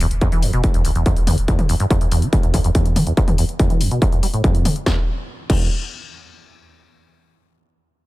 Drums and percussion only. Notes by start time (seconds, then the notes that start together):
0.00 open hi-hat
0.11 closed hi-hat
0.21 kick, closed hi-hat
0.32 closed hi-hat
0.42 open hi-hat
0.53 closed hi-hat
0.64 kick, closed hi-hat
0.74 closed hi-hat
0.85 open hi-hat
0.95 closed hi-hat
1.06 kick, closed hi-hat
1.17 closed hi-hat
1.27 open hi-hat, mid tom
1.38 closed hi-hat
1.48 kick, closed hi-hat
1.59 closed hi-hat, mid tom
1.69 open hi-hat
1.80 closed hi-hat
1.91 kick, closed hi-hat
2.01 closed hi-hat
2.12 open hi-hat
2.22 closed hi-hat
2.33 kick, closed hi-hat
2.43 closed hi-hat
2.54 kick, open hi-hat
2.64 closed hi-hat
2.75 kick, closed hi-hat
2.86 closed hi-hat
2.96 open hi-hat, mid tom
3.07 closed hi-hat
3.17 kick, closed hi-hat
3.28 closed hi-hat, mid tom
3.38 open hi-hat
3.49 closed hi-hat
3.59 kick, closed hi-hat
3.70 closed hi-hat
3.81 open hi-hat
3.91 closed hi-hat
4.02 kick, closed hi-hat
4.12 closed hi-hat
4.23 open hi-hat
4.34 closed hi-hat
4.44 kick, closed hi-hat
4.55 closed hi-hat
4.65 open hi-hat, mid tom
4.76 closed hi-hat
4.86 kick, snare
5.50 kick, crash